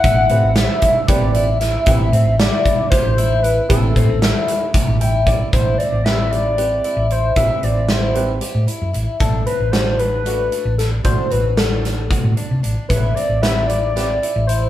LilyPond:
<<
  \new Staff \with { instrumentName = "Analog synth lead" } { \time 7/8 \key a \dorian \tempo 4 = 114 fis''4 e''4 d''4 e''8~ | e''4 d''4 c''4 b'8 | a'2~ a'8 r4 | c''8 d''8 e''8 d''4. c''8 |
e''8 d''8 c''4. r4 | a'8 b'8 c''8 b'4. a'8 | c''8 b'8 a'4. r4 | b'8 d''8 e''8 d''4. c''8 | }
  \new Staff \with { instrumentName = "Grand piano" } { \time 7/8 \key a \dorian r8 <c' e' g' b'>8 r4 <c' e' g' b'>8 r4 | <c' e' g' b'>8 r2. | <c' e' g' b'>8 r2 g''8 d''8 | r4 <c' e' g' b'>4 <c' e' g' b'>8 r4 |
<c' e' g' b'>4. <c' e' g' b'>8 r4. | r4 <a d' fis' a'>8 r8 <a d' fis' a'>8 r4 | <a d' fis' a'>4. r2 | r4 <c' e' g' b'>8 r8 <c' e' g' b'>8 r4 | }
  \new Staff \with { instrumentName = "Twelve-string acoustic guitar" } { \time 7/8 \key a \dorian e'8 c'8 e'4 g'8 e'8 e'8 | e'8 c'8 e'4 g'8 e'8 e'8 | e'8 c'8 e'4 g'8 e'8 e'8 | e'8 c'8 e'4 g'8 e'8 e'8 |
e'8 c'8 e'4 g'8 e'8 e'8 | d'8 c'8 d'4 fis'8 d'8 d'8 | d'8 c'8 d'4 fis'8 d'8 d'8 | e'8 c'8 e'4 g'8 e'8 e'8 | }
  \new Staff \with { instrumentName = "Fingered electric bass" } { \clef bass \time 7/8 \key a \dorian a,,8 a,16 a,,8 r4 a,,4~ a,,16 | a,,8 a,16 a,,8 r4 a,,4~ a,,16 | a,,8 a,16 a,,8 r4 a,,4~ a,,16 | a,,8 r16 a,,2 a,,8. |
a,,16 r16 a,,4.~ a,,16 a,16 r16 fis,16 a,,16 r16 | a,,8 r16 a,,2 a,,8. | a,,16 r16 a,,4.~ a,,16 a,16 r16 c16 a,,16 r16 | a,,8 r16 a,,2 a,,8. | }
  \new DrumStaff \with { instrumentName = "Drums" } \drummode { \time 7/8 <hh bd>8 hh8 <hh sn>8 <hh bd>8 <hh bd>8 hh8 <hh sn>8 | <hh bd>8 hh8 <hh sn>8 <hh bd>8 <hh bd>8 hh8 hh8 | <hh bd>8 <hh bd>8 <hh sn>8 hh8 <hh bd>8 hh8 <hh bd>8 | <hh bd>8 hh8 <hh sn>8 hh8 hh8 hh8 hh8 |
<hh bd>8 hh8 <hh sn>8 hh8 hh8 hh8 hh8 | <hh bd>8 hh8 <hh sn>8 hh8 hh8 hh8 <hh sn>8 | <hh bd>8 hh8 <hh sn>8 <hh sn>8 <hh bd>8 hh8 hh8 | <hh bd>8 hh8 <hh sn>8 hh8 <hh sn>8 hh8 hh8 | }
>>